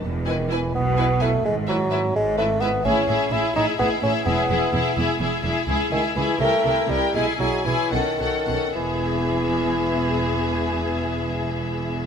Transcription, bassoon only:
\new Staff \with { instrumentName = "Bassoon" } { \clef bass \time 6/8 \key e \major \tempo 4. = 83 r8 dis8 e8 b4 a8 | gis8 fis4 gis8 a8 b8 | cis'4 e'8 dis'8 b8 cis'8 | b4. r4. |
r8 dis8 e8 a4 g8 | gis8 fis8 e8 dis4. | e2.~ | e2. | }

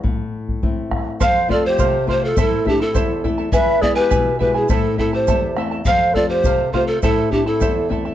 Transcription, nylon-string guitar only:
\new Staff \with { instrumentName = "Nylon-string guitar" } { \time 2/4 \key a \minor \tempo 4 = 103 a,4 <a c' e'>4 | f,8 <a c' f'>8 c8 <a c' f'>8 | a,8 <a c' e'>8 e,8 <a c' e'>8 | e,8 <gis b e'>8 b,8 <gis b e'>8 |
a,8 <a c' e'>8 e,8 <a c' e'>8 | f,8 <a c' f'>8 c8 <a c' f'>8 | a,8 <a c' e'>8 e,8 <a c' e'>8 | }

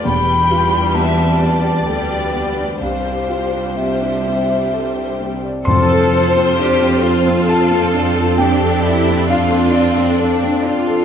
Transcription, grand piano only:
\new Staff \with { instrumentName = "Grand piano" } { \time 3/4 \key f \lydian \tempo 4 = 66 << { r2. | r2. | c'''2 a''4 | g''4 f''4. r8 | } \\ { e,16 g'16 f'16 g'16 b16 c'16 b16 g'16 a'16 g'16 b16 d''16 | c,16 g'16 f'16 g'16 c'16 d'16 c'16 g'16 a'16 g'16 c'16 d''16 | f,16 a'16 c''16 c'16 d'16 c'16 c''16 c'16 a'16 c'16 d'16 a'16 | f,16 a'16 d''16 c'16 d'16 c'16 d''16 c'16 a'16 c'16 d'16 a'16 | } >> }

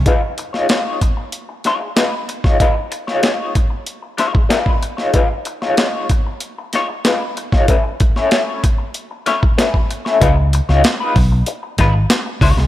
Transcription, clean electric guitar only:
\new Staff \with { instrumentName = "Clean electric guitar" } { \time 4/4 \key des \mixolydian \tempo 4 = 94 <aes ees' f' ces''>16 r8 <aes ees' f' des''>16 <aes ees' f' des''>8 r4 <aes ees' f' des''>16 r16 <aes ees' f' ces''>16 r8 <aes ees' f' des''>16 | <aes ees' f' ces''>16 r8 <aes ees' f' des''>16 <aes ees' f' des''>8 r4 <aes ees' f' des''>16 r16 <aes ees' f' ces''>16 r8 <aes ees' f' des''>16 | <aes ees' f' ces''>16 r8 <aes ees' f' des''>16 <aes ees' f' des''>8 r4 <aes ees' f' des''>16 r16 <aes ees' f' ces''>16 r8 <aes ees' f' des''>16 | <a des' fes' ces''>16 r8 <a des' fes' des''>16 <a des' fes' des''>8 r4 <a des' fes' des''>16 r16 <a des' fes' ces''>16 r8 <a des' fes' des''>16 |
<aes ees' f' ces''>16 r8 <aes ees' f' des''>16 r16 <aes ees' f' ces''>16 r4 <aes ees' f' ces''>16 r8. <aes ees' f' des''>16 r16 | }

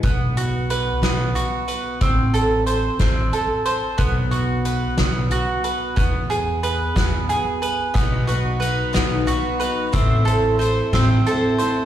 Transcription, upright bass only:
\new Staff \with { instrumentName = "Upright bass" } { \clef bass \time 6/8 \key b \mixolydian \tempo 4. = 61 b,,4. b,,8 r4 | a,,4. a,,8 r4 | b,,4. b,,8 r4 | e,4. e,8 r4 |
b,,4. b,,8 r4 | a,,4. a,,8 r4 | }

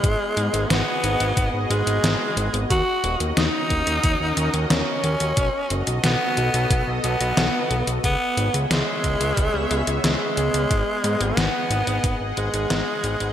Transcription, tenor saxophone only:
\new Staff \with { instrumentName = "Tenor saxophone" } { \time 4/4 \key gis \phrygian \tempo 4 = 90 gis4 b4. gis4. | fis'4 dis'2 cis'4~ | cis'4 b4. b4. | b4 gis2 gis4~ |
gis4 b4. gis4. | }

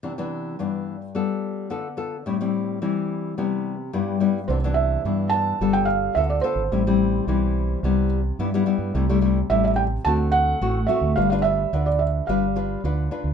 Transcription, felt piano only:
\new Staff \with { instrumentName = "Felt piano" } { \time 4/4 \key c \major \tempo 4 = 108 r1 | r1 | c''8 e''4 a''8. g''16 f''8 e''16 d''16 c''8~ | c''2~ c''8 r4. |
r4 e''16 e''16 g''8 a''8 fis''4 e''8 | f''16 f''16 e''8. d''16 e''8 f''4 r4 | }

